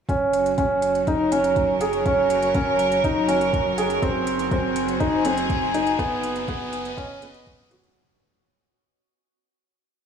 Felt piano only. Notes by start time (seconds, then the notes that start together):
0.09 C#4
0.58 C#4
1.08 D#4
1.32 C#4
1.81 G#4
2.06 C#4
2.55 C#4
3.04 D#4
3.28 C#4
3.78 G#4
4.02 C4
4.52 C4
5.00 D#4
5.25 C4
5.74 D#4
5.99 B3
6.48 B3
6.97 C#4
7.22 B3
7.71 F#4